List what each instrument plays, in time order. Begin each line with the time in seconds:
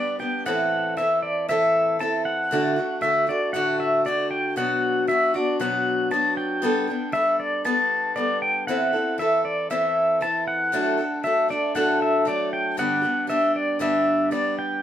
Already playing: steel-string acoustic guitar G3 B3 D4 G4, pedal steel guitar B4 D5
0.19 steel-string acoustic guitar G3 B3 D4 G4, pedal steel guitar G5
0.46 steel-string acoustic guitar A2 E3 C4 E4 A4, pedal steel guitar F#5
0.97 steel-string acoustic guitar E3 C4 E4 A4, pedal steel guitar E5
1.22 pedal steel guitar D5
1.49 steel-string acoustic guitar A2 E3 C4 E4 A4, pedal steel guitar E5
1.99 steel-string acoustic guitar E3 C4 E4 A4, pedal steel guitar A5
2.25 pedal steel guitar F#5
2.51 steel-string acoustic guitar A2 D3 A3 D4 F#4
2.76 steel-string acoustic guitar A3 D4 F#4
3.01 steel-string acoustic guitar D3 A3 D4 F#4, pedal steel guitar E5
3.27 steel-string acoustic guitar A3 D4 F#4, pedal steel guitar D5
3.53 steel-string acoustic guitar A2 D3 A3 D4 F#4, pedal steel guitar F#5
3.80 pedal steel guitar E5
4.05 steel-string acoustic guitar D3 A3 D4 F#4, pedal steel guitar D5
4.31 pedal steel guitar G5
4.56 steel-string acoustic guitar B2 F#3 B3 D4 F#4, pedal steel guitar F#5
5.07 steel-string acoustic guitar F#3 B3 D4 F#4, pedal steel guitar E5
5.34 steel-string acoustic guitar B3 D4 F#4, pedal steel guitar D5
5.60 steel-string acoustic guitar B2 F#3 B3 D4 F#4, pedal steel guitar F#5
6.11 steel-string acoustic guitar F#3 B3 D4 F#4, pedal steel guitar A5
6.37 pedal steel guitar G5
6.62 steel-string acoustic guitar G3 B3 D4 A4
6.87 steel-string acoustic guitar B3 D4 A4
7.12 steel-string acoustic guitar G3 B3 D4 A4, pedal steel guitar E5
7.40 pedal steel guitar D5
7.65 steel-string acoustic guitar G3 B3 D4 A4, pedal steel guitar A5
8.16 steel-string acoustic guitar G3 B3 D4 A4, pedal steel guitar D5
8.42 pedal steel guitar G5
8.67 steel-string acoustic guitar A2 E3 C4 E4 A4, pedal steel guitar F#5
8.93 steel-string acoustic guitar C4 E4 A4
9.18 steel-string acoustic guitar E3 C4 E4 A4, pedal steel guitar E5
9.45 pedal steel guitar D5
9.70 steel-string acoustic guitar A2 E3 C4 E4 A4, pedal steel guitar E5
10.21 steel-string acoustic guitar E3 C4 E4 A4, pedal steel guitar A5
10.48 pedal steel guitar F#5
10.72 steel-string acoustic guitar A2 F#3 A3 D4 A4
10.98 steel-string acoustic guitar A3 D4 A4
11.23 steel-string acoustic guitar F#3 A3 D4 A4, pedal steel guitar E5
11.48 steel-string acoustic guitar A3 D4 A4, pedal steel guitar D5
11.75 steel-string acoustic guitar A2 F#3 A3 D4 A4, pedal steel guitar F#5
12.02 pedal steel guitar E5
12.25 steel-string acoustic guitar F#3 A3 D4 A4, pedal steel guitar D5
12.53 pedal steel guitar G5
12.77 steel-string acoustic guitar G2 D3 G3 B3 D4 G4, pedal steel guitar F#5
13.02 steel-string acoustic guitar G3 B3 D4 G4
13.27 steel-string acoustic guitar G3 B3 D4 G4, pedal steel guitar E5
13.56 pedal steel guitar D5
13.79 steel-string acoustic guitar G2 D3 G3 B3 D4 G4, pedal steel guitar E5
14.31 steel-string acoustic guitar G3 B3 D4 G4, pedal steel guitar D5
14.59 pedal steel guitar G5